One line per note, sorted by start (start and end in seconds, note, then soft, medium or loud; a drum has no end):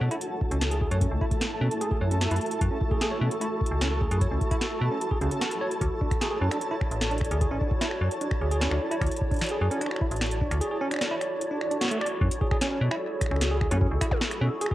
0.00 0.09 B2 loud
0.00 5.77 A3 medium
0.00 12.17 E4 medium
0.00 12.17 F#4 medium
0.00 5.77 A4 medium
0.00 12.22 A4 medium
0.00 12.22 A5 medium
0.11 0.14 E4 loud
0.11 closed hi-hat medium
0.21 closed hi-hat medium
0.41 kick loud
0.51 0.88 C#2 medium
0.51 0.57 C#4 medium
0.51 closed hi-hat soft
0.61 snare loud
0.61 closed hi-hat medium
0.71 0.77 G#4 medium
0.71 closed hi-hat medium
0.81 0.87 G#4 medium
0.81 kick loud
0.91 1.07 F#2 loud
0.91 0.97 C#5 medium
0.91 closed hi-hat medium
1.01 1.07 C#4 medium
1.01 kick loud
1.01 closed hi-hat medium
1.11 1.19 C#2 medium
1.21 1.24 E4 loud
1.21 kick loud
1.31 kick loud
1.31 closed hi-hat soft
1.41 snare loud
1.41 closed hi-hat medium
1.61 1.69 B2 loud
1.61 1.67 C#4 medium
1.71 closed hi-hat medium
1.81 1.87 G#4 medium
1.81 closed hi-hat medium
1.91 1.97 G#4 medium
1.91 kick loud
2.01 2.28 F#2 medium
2.01 2.07 C#5 medium
2.11 2.17 C#4 medium
2.11 closed hi-hat medium
2.21 snare loud
2.21 closed hi-hat medium
2.31 2.39 F#2 medium
2.31 2.35 E4 loud
2.31 closed hi-hat medium
2.36 closed hi-hat soft
2.41 closed hi-hat soft
2.46 closed hi-hat soft
2.51 closed hi-hat medium
2.61 2.69 F#2 medium
2.61 kick loud
2.61 closed hi-hat medium
2.71 2.77 C#4 medium
2.81 kick loud
2.91 2.97 G#4 medium
2.91 kick loud
3.01 3.07 G#4 medium
3.01 snare loud
3.01 closed hi-hat medium
3.11 3.17 C#5 medium
3.21 3.29 B2 loud
3.21 3.27 C#4 medium
3.31 closed hi-hat medium
3.41 3.45 E4 loud
3.41 closed hi-hat medium
3.61 kick loud
3.66 closed hi-hat medium
3.71 4.08 C#2 medium
3.81 3.87 C#4 medium
3.81 snare loud
3.81 closed hi-hat medium
4.01 4.07 G#4 medium
4.01 kick loud
4.11 4.27 F#2 loud
4.11 4.17 G#4 medium
4.11 closed hi-hat medium
4.21 4.27 C#5 medium
4.21 kick loud
4.21 closed hi-hat medium
4.31 4.39 C#2 medium
4.31 4.37 C#4 medium
4.41 kick loud
4.41 closed hi-hat soft
4.51 4.55 E4 loud
4.51 kick loud
4.51 closed hi-hat soft
4.61 snare loud
4.61 closed hi-hat medium
4.81 4.89 B2 loud
4.91 4.97 C#4 medium
5.01 closed hi-hat medium
5.11 5.17 G#4 medium
5.11 kick loud
5.21 5.29 C#2 medium
5.21 5.29 C#3 loud
5.21 closed hi-hat soft
5.31 5.39 C#4 medium
5.31 closed hi-hat soft
5.41 5.47 F#4 medium
5.41 snare loud
5.41 closed hi-hat medium
5.51 closed hi-hat medium
5.61 5.67 C#5 loud
5.71 closed hi-hat soft
5.81 5.89 D2 medium
5.81 12.17 C#5 medium
5.81 12.17 D5 medium
5.81 kick loud
5.81 closed hi-hat medium
6.01 6.07 D4 medium
6.01 kick loud
6.11 finger snap soft
6.11 kick loud
6.11 closed hi-hat soft
6.21 6.27 G#4 medium
6.21 snare loud
6.21 closed hi-hat medium
6.31 6.37 G#4 medium
6.41 6.49 F#2 loud
6.41 6.47 C#4 medium
6.51 6.57 D4 medium
6.51 finger snap medium
6.51 closed hi-hat medium
6.61 closed hi-hat medium
6.71 6.74 E4 loud
6.81 finger snap soft
6.81 kick loud
6.91 7.28 A1 medium
6.91 closed hi-hat soft
7.01 snare loud
7.01 closed hi-hat medium
7.11 7.17 D4 medium
7.11 closed hi-hat soft
7.18 finger snap soft
7.18 kick loud
7.18 closed hi-hat soft
7.25 closed hi-hat soft
7.31 7.47 D2 loud
7.31 7.37 G#4 medium
7.31 closed hi-hat soft
7.41 7.47 G#4 medium
7.41 kick loud
7.41 closed hi-hat medium
7.51 7.59 A1 medium
7.51 7.57 C#4 medium
7.61 7.67 D4 medium
7.61 kick loud
7.71 kick loud
7.81 7.84 E4 loud
7.81 snare loud
7.81 closed hi-hat medium
7.91 finger snap soft
8.01 8.09 F#2 loud
8.11 closed hi-hat soft
8.21 8.27 D4 medium
8.21 closed hi-hat medium
8.31 finger snap medium
8.31 kick loud
8.41 8.68 D2 medium
8.41 8.47 G#4 medium
8.51 8.57 G#4 medium
8.51 closed hi-hat soft
8.61 8.67 C#4 loud
8.61 snare loud
8.61 closed hi-hat medium
8.71 8.79 D2 medium
8.71 8.77 D4 medium
8.71 finger snap medium
8.91 8.95 E4 loud
8.91 closed hi-hat medium
9.01 9.09 D2 loud
9.01 finger snap medium
9.01 kick loud
9.01 closed hi-hat soft
9.06 closed hi-hat soft
9.11 closed hi-hat soft
9.16 closed hi-hat medium
9.21 kick loud
9.31 9.37 D4 medium
9.31 kick loud
9.31 closed hi-hat soft
9.34 closed hi-hat soft
9.36 closed hi-hat soft
9.39 finger snap medium
9.39 snare loud
9.39 closed hi-hat soft
9.41 closed hi-hat medium
9.44 closed hi-hat soft
9.46 closed hi-hat soft
9.49 9.57 G#4 medium
9.49 closed hi-hat soft
9.61 9.69 F#2 loud
9.61 9.67 G#4 medium
9.71 9.77 C#4 loud
9.71 closed hi-hat medium
9.81 9.87 D4 medium
9.81 finger snap soft
9.81 closed hi-hat medium
9.86 finger snap soft
9.91 finger snap medium
9.96 finger snap medium
10.01 10.05 E4 loud
10.01 kick loud
10.11 10.48 A1 medium
10.11 closed hi-hat soft
10.16 closed hi-hat soft
10.21 finger snap medium
10.21 snare loud
10.21 closed hi-hat medium
10.26 closed hi-hat soft
10.31 closed hi-hat medium
10.41 10.47 D4 medium
10.41 kick loud
10.51 10.61 D2 loud
10.51 finger snap medium
10.51 closed hi-hat soft
10.61 10.67 G#4 medium
10.61 closed hi-hat medium
10.71 10.77 G#4 medium
10.81 10.87 C#4 loud
10.91 10.97 D4 medium
10.91 finger snap medium
10.91 closed hi-hat medium
10.94 finger snap medium
10.96 finger snap soft
10.99 finger snap soft
11.01 finger snap soft
11.01 snare loud
11.01 closed hi-hat medium
11.04 finger snap soft
11.06 finger snap soft
11.11 11.14 E4 loud
11.21 finger snap medium
11.21 closed hi-hat soft
11.41 closed hi-hat medium
11.51 11.57 D4 medium
11.61 finger snap medium
11.71 11.77 D4 medium
11.71 closed hi-hat medium
11.81 11.87 F#4 medium
11.81 snare loud
11.81 closed hi-hat medium
11.85 snare medium
11.88 11.97 A3 loud
11.88 snare medium
11.88 closed hi-hat medium
12.01 12.07 D5 loud
12.01 finger snap medium
12.06 closed hi-hat medium
12.21 12.29 F#2 loud
12.21 12.27 C#4 medium
12.21 14.75 E4 medium
12.21 14.75 F#4 medium
12.21 14.75 G#4 medium
12.21 14.75 A4 medium
12.21 kick loud
12.31 closed hi-hat medium
12.41 12.47 G#4 medium
12.41 kick loud
12.51 12.57 G#4 medium
12.51 finger snap medium
12.51 kick loud
12.61 12.67 C#4 loud
12.61 snare loud
12.61 closed hi-hat loud
12.71 12.77 C#4 medium
12.81 12.89 B2 loud
12.91 12.94 E4 loud
12.91 finger snap medium
13.21 finger snap medium
13.21 kick loud
13.21 closed hi-hat medium
13.26 finger snap soft
13.31 13.68 C#2 medium
13.31 13.37 C#4 medium
13.31 finger snap soft
13.36 finger snap soft
13.41 snare loud
13.41 closed hi-hat loud
13.51 13.57 G#4 medium
13.61 13.67 G#4 medium
13.61 finger snap medium
13.61 kick loud
13.71 13.87 F#2 loud
13.71 13.77 C#4 loud
13.71 closed hi-hat medium
13.71 high tom medium
13.81 13.87 C#4 medium
13.81 kick loud
13.91 13.99 C#2 medium
14.01 14.04 E4 loud
14.01 finger snap medium
14.01 kick loud
14.01 closed hi-hat loud
14.11 kick loud
14.11 high tom medium
14.21 snare loud
14.31 finger snap soft
14.31 closed hi-hat medium
14.41 14.49 B2 loud
14.41 14.47 C#4 medium
14.61 14.67 G#4 medium
14.61 closed hi-hat medium
14.66 finger snap medium
14.71 14.75 G#4 medium
14.71 kick loud